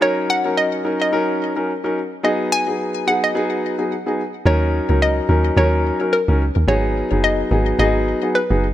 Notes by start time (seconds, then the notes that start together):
0.01 F#3 C#4 D#4 A#4 C#5
0.30 F#5
0.45 F#3 C#4 D#4 A#4
0.57 D#5
0.84 F#3 C#4 D#4 A#4
1.02 D#5
1.12 F#3 C#4 D#4 A#4
1.56 F#3 C#4 D#4 A#4
1.84 F#3 C#4 D#4 A#4
2.23 F#3 B3 D#4 G#4 D#5
2.52 G#5
2.67 F#3 B3 D#4 G#4
3.07 F#3 B3 D#4 G#4 F#5
3.24 D#5
3.34 F#3 B3 D#4 G#4
3.78 F#3 B3 D#4 G#4
4.06 F#3 B3 D#4 G#4
4.45 D#2 F#3 C#4 D#4 A#4 C#5
4.89 C#2 F#3 C#4 D#4 A#4
5.02 D#5
5.29 D#2 F#3 C#4 D#4 A#4
5.57 D#2 F#3 C#4 D#4 A#4 C#5
6.00 F#3 C#4 D#4 A#4
6.13 A#4
6.28 C#2 F#3 C#4 D#4 A#4
6.56 D#2
6.68 G#1 F#3 B3 D#4 G#4 C#5
7.11 F#1 F#3 B3 D#4 G#4
7.24 D#5
7.51 G#1 F#3 B3 D#4 G#4
7.79 G#1 F#3 B3 D#4 G#4 D#5
8.22 F#3 B3 D#4 G#4
8.35 B4
8.50 F#1 F#3 B3 D#4 G#4